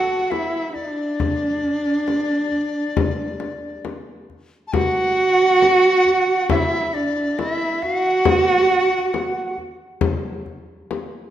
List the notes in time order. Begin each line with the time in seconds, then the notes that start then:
Already playing: F#4 F#5
0.30 E4 E5, frame drum
0.75 D4 D5, frame drum
1.20 frame drum
1.63 frame drum
2.08 frame drum
2.52 frame drum
2.97 frame drum
3.40 frame drum
3.85 frame drum
4.30 frame drum
4.67 A5
4.73 F#4 F#5, frame drum
5.62 frame drum
6.06 frame drum
6.50 E4 E5, frame drum
6.94 D4 D5, frame drum
7.38 E4 E5, frame drum
7.82 F#4 F#5, frame drum
8.25 frame drum
9.14 frame drum
9.58 frame drum
10.01 frame drum
10.46 frame drum
10.91 frame drum